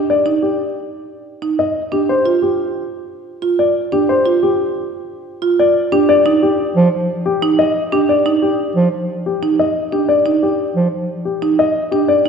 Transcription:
0.00 0.14 D4 soft
0.00 0.14 G4 soft
0.10 0.31 D5 medium
0.26 0.47 D#4 soft
0.42 0.64 G4 soft
1.42 1.64 D#4 soft
1.59 1.81 D#5 medium
1.92 2.14 D4 soft
1.92 2.14 G4 soft
2.09 2.31 C5 medium
2.26 2.47 F4 soft
2.42 2.64 G4 soft
3.42 3.64 F4 soft
3.59 3.81 D5 medium
3.92 4.14 D4 soft
3.92 4.14 G4 soft
4.09 4.31 C5 medium
4.26 4.47 F4 soft
4.43 4.64 G4 medium
5.42 5.64 F4 soft
5.59 5.81 D5 medium
5.92 6.14 D4 medium
5.92 6.14 G4 medium
6.09 6.31 D5 medium
6.26 6.47 D#4 medium
6.42 6.64 G4 medium
6.76 6.88 F3 medium
7.26 7.47 G4 medium
7.42 7.64 D#4 medium
7.59 7.81 D#5 medium
7.92 8.14 D4 medium
7.92 8.14 G4 medium
8.09 8.31 D5 medium
8.26 8.47 D#4 medium
8.42 8.64 G4 soft
8.76 8.88 F3 soft
9.26 9.48 G4 soft
9.43 9.64 D#4 soft
9.59 9.81 D#5 medium
9.92 10.14 D4 soft
9.92 10.14 G4 soft
10.09 10.31 D5 medium
10.26 10.47 D#4 soft
10.43 10.64 G4 medium
10.76 10.88 F3 soft
11.25 11.47 G4 soft
11.42 11.64 D#4 soft
11.59 11.81 D#5 medium
11.91 12.14 D4 soft
11.91 12.14 G4 medium
12.08 12.29 D5 medium
12.26 12.29 D#4 soft

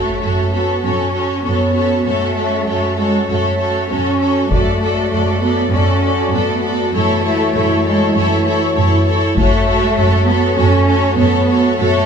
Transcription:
0.00 0.12 F#2 soft
0.00 4.47 F#3 soft
0.00 0.53 A3 medium
0.00 4.47 C#4 soft
0.00 0.20 F#4 soft
0.00 4.47 F#4 soft
0.00 0.21 A4 soft
0.00 0.21 C#5 soft
0.00 4.47 C#5 soft
0.00 impact soft
0.22 0.73 F#2 soft
0.22 0.51 F#4 soft
0.22 0.50 A4 soft
0.22 0.52 C#5 soft
0.51 0.84 B3 medium
0.51 0.82 F#4 soft
0.51 0.82 A4 soft
0.51 0.82 C#5 soft
0.83 1.35 F#2 medium
0.83 1.45 C#4 medium
0.83 1.13 F#4 soft
0.83 1.14 A4 soft
0.83 1.14 C#5 soft
1.14 1.43 F#4 soft
1.14 1.44 A4 soft
1.14 1.44 C#5 soft
1.44 1.96 F#2 medium
1.44 2.06 B3 medium
1.44 1.74 F#4 soft
1.44 1.74 A4 soft
1.44 1.74 C#5 soft
1.75 2.05 F#4 soft
1.75 2.05 A4 soft
1.75 2.05 C#5 soft
2.05 2.57 F#2 soft
2.05 2.99 A3 medium
2.05 2.36 F#4 soft
2.05 2.36 A4 soft
2.05 2.36 C#5 soft
2.37 2.66 F#4 soft
2.37 2.67 A4 soft
2.37 2.67 C#5 soft
2.67 3.19 F#2 soft
2.67 2.97 F#4 soft
2.67 2.97 A4 soft
2.67 2.97 C#5 soft
2.98 3.29 G#3 medium
2.98 3.28 F#4 soft
2.98 3.28 A4 soft
2.98 3.27 C#5 soft
3.28 3.80 F#2 medium
3.28 3.88 A3 medium
3.28 3.59 F#4 soft
3.28 3.59 A4 soft
3.28 3.58 C#5 soft
3.60 3.89 F#4 soft
3.60 3.88 A4 soft
3.60 3.88 C#5 soft
3.89 4.41 F#2 medium
3.89 4.50 C#4 medium
3.89 4.19 F#4 soft
3.89 4.20 A4 soft
3.89 4.19 C#5 soft
4.20 4.50 F#4 soft
4.20 4.50 A4 soft
4.20 4.51 C#5 soft
4.50 5.02 F#2 medium
4.50 6.90 F#3 medium
4.50 5.40 A3 medium
4.50 9.22 A3 medium
4.50 9.21 F#4 medium
4.50 4.81 F#4 soft
4.50 7.51 A4 soft
4.50 4.81 A4 soft
4.50 4.81 D5 soft
4.50 taiko medium
4.82 5.11 F#4 soft
4.82 5.11 A4 soft
4.82 5.12 D5 soft
5.12 5.63 F#2 medium
5.12 5.41 F#4 soft
5.12 5.41 A4 soft
5.12 5.41 D5 soft
5.42 5.73 B3 medium
5.42 5.70 F#4 soft
5.42 5.72 A4 soft
5.42 5.72 D5 soft
5.72 6.23 F#2 medium
5.72 6.33 C#4 medium
5.72 6.01 F#4 soft
5.72 6.02 A4 soft
5.72 6.02 D5 soft
6.02 6.32 F#4 soft
6.02 6.33 A4 soft
6.02 6.33 D5 soft
6.33 6.84 F#2 medium
6.33 6.94 B3 medium
6.33 6.63 F#4 soft
6.33 6.62 A4 soft
6.33 6.63 D5 soft
6.63 6.93 F#4 soft
6.63 6.93 A4 soft
6.63 6.94 D5 soft
6.93 7.45 F#2 medium
6.93 9.22 E3 medium
6.93 7.83 A3 medium
6.93 7.23 E4 medium
6.93 7.24 A4 medium
6.93 7.24 C#5 medium
7.25 7.53 E4 soft
7.25 7.54 A4 soft
7.25 7.54 C#5 soft
7.54 8.05 F#2 medium
7.54 7.85 E4 soft
7.54 7.85 A4 soft
7.54 9.21 C#5 medium
7.54 7.85 C#5 soft
7.85 8.15 G#3 medium
7.85 8.15 E4 soft
7.85 8.15 A4 soft
7.85 8.14 C#5 soft
8.15 8.66 F#2 medium
8.15 8.76 A3 medium
8.15 8.45 E4 soft
8.15 8.45 A4 medium
8.15 8.45 C#5 medium
8.46 8.75 E4 soft
8.46 8.76 A4 soft
8.46 8.75 C#5 soft
8.75 9.27 F#2 medium
8.75 9.06 E4 soft
8.75 9.06 A4 soft
8.75 9.05 C#5 medium
9.06 9.37 E4 soft
9.06 9.37 A4 soft
9.06 9.36 C#5 soft
9.36 9.87 F#2 medium
9.36 12.06 F#3 medium
9.36 10.23 A3 medium
9.36 12.06 A3 medium
9.36 9.67 F#4 medium
9.36 9.67 A4 medium
9.36 12.06 A4 medium
9.36 9.65 C#5 medium
9.36 12.06 C#5 medium
9.36 taiko medium
9.66 9.97 F#4 soft
9.66 9.97 A4 soft
9.66 9.96 C#5 medium
9.96 10.47 F#2 medium
9.96 10.27 F#4 medium
9.96 10.28 A4 soft
9.96 10.27 C#5 medium
10.26 10.57 B3 medium
10.26 10.56 F#4 medium
10.26 10.57 A4 medium
10.26 10.57 C#5 soft
10.57 11.09 F#2 medium
10.57 11.18 C#4 medium
10.57 10.87 F#4 medium
10.57 10.87 A4 medium
10.57 10.88 C#5 medium
10.88 11.17 F#4 medium
10.88 11.16 A4 soft
10.88 11.18 C#5 soft
11.17 11.69 F#2 medium
11.17 11.77 B3 medium
11.17 11.47 F#4 soft
11.17 11.48 A4 medium
11.17 11.48 C#5 medium
11.49 11.77 F#4 soft
11.49 11.77 A4 soft
11.49 11.79 C#5 soft
11.78 12.06 F#2 medium
11.78 12.06 A3 medium
11.78 12.06 F#4 medium
11.78 12.06 A4 medium
11.78 12.06 C#5 medium

